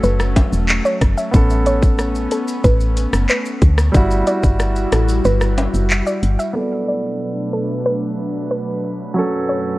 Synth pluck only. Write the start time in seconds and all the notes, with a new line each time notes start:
0.03 B4
0.85 C#5
1.17 E5
1.67 C#5
2.32 A4
2.64 B4
3.30 B4
4.27 D5
4.93 A4
5.25 B4
6.06 D5
6.39 E5
6.88 D5
7.53 A4
7.86 B4
8.51 B4
9.49 C#5